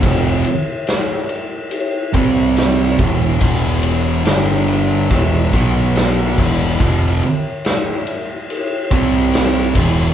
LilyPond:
<<
  \new Staff \with { instrumentName = "Distorted electric guitar" } { \clef bass \time 4/4 \key e \minor \tempo 4 = 71 <f, c f>8 r2 <c g c'>4 <e, b, e>8 | <e, b, e>4 <g, d g>4 <e, b, e>8 <b, fis b>4 <e, b, e>8 | <f, c f>8 r2 <c g c'>4 <e, b, e>8 | }
  \new Staff \with { instrumentName = "Distorted electric guitar" } { \clef bass \time 4/4 \key e \minor <f, c f>8 r2 <c g c'>4 <e, b, e>8 | <e, b, e>4 <g, d g>4 <e, b, e>8 <b, fis b>4 <e, b, e>8 | <f, c f>8 r2 <c g c'>4 <e, b, e>8 | }
  \new Staff \with { instrumentName = "Picked electric bass" } { \clef bass \time 4/4 \key e \minor f,,8 r2 c,4 e,,8 | e,,4 g,,4 e,,8 b,,4 e,,8 | f,,8 r2 c,4 e,,8 | }
  \new DrumStaff \with { instrumentName = "Drums" } \drummode { \time 4/4 <bd cymr>8 cymr8 <cymr sn>8 cymr8 cymr8 <bd cymr>8 <cymr sn>8 <bd cymr>8 | <cymc bd>8 cymr8 <cymr sn>8 cymr8 <bd cymr>8 <bd cymr>8 <cymr sn>8 <cymc bd>16 sn16 | bd8 cymr8 <cymr sn>8 cymr8 cymr8 <bd cymr>8 <cymr sn>8 <cymc bd>8 | }
>>